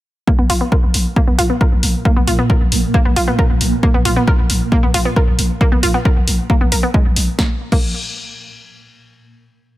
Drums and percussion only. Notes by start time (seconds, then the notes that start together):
0.27 kick
0.50 open hi-hat
0.72 kick
0.94 open hi-hat
1.16 kick
1.39 open hi-hat
1.61 kick
1.83 open hi-hat
2.05 kick
2.28 open hi-hat
2.50 kick
2.72 open hi-hat
2.94 kick
3.16 open hi-hat
3.39 kick
3.61 open hi-hat
3.83 kick
4.05 open hi-hat
4.28 kick
4.50 open hi-hat
4.72 kick
4.94 open hi-hat
5.16 kick
5.39 open hi-hat
5.61 kick
5.83 open hi-hat
6.05 kick
6.28 open hi-hat
6.50 kick
6.72 open hi-hat
6.94 kick
7.16 open hi-hat
7.39 kick, snare
7.72 kick, crash